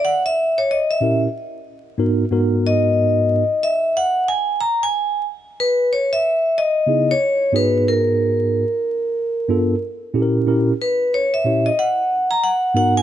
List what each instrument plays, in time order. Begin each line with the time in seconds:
0.05 vibraphone F#5
0.26 vibraphone E5
0.58 vibraphone C#5
0.71 vibraphone D#5
0.91 vibraphone E5
1.00 tine electric piano A#2 C#4 E4 G4 A#4
1.98 tine electric piano G#2 B3 D#4 F#4 A#4
2.31 tine electric piano G#2 B3 D#4 F#4 A#4
2.66 vibraphone D#5
3.63 vibraphone E5
3.97 vibraphone F#5
4.28 vibraphone G#5
4.61 vibraphone A#5
4.83 vibraphone G#5
5.60 vibraphone B4
5.93 vibraphone C#5
6.13 vibraphone E5
6.58 vibraphone D#5
6.86 tine electric piano C#3 B3 D#4 E4 G#4
7.11 vibraphone C#5
7.52 tine electric piano G#2 B3 D#4 F#4 G#4, vibraphone B4
7.88 vibraphone A#4
9.48 tine electric piano G2 B3 D4 F4 A4
10.14 tine electric piano A#2 C#4 E4 G4 A4
10.22 tine electric piano A#4
10.46 tine electric piano A#2 C#4 E4 G4 A#4
10.82 vibraphone B4
11.14 vibraphone C#5
11.34 vibraphone E5
11.45 tine electric piano A#2 C#4 E4 G4 C#5
11.66 vibraphone D#5
11.79 vibraphone F#5
12.31 vibraphone A#5
12.44 vibraphone F#5
12.74 tine electric piano G#2 B3 D#4 F#4 A#4, vibraphone F#5
12.97 vibraphone G#5